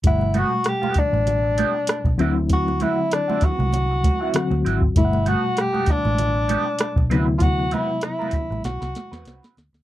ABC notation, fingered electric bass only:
X:1
M:4/4
L:1/16
Q:"Swing 16ths" 1/4=98
K:G
V:1 name="Fingered electric bass" clef=bass
G,,,3 z4 A,,,4 z2 B,,, D,,2- | D,,3 z4 C,,4 z2 D,, _A,,,2 | G,,,3 z4 A,,,4 z2 B,,, D,,2- | D,,3 z4 A,,, B,,, C,, z E,, C,, z D,, D,, |]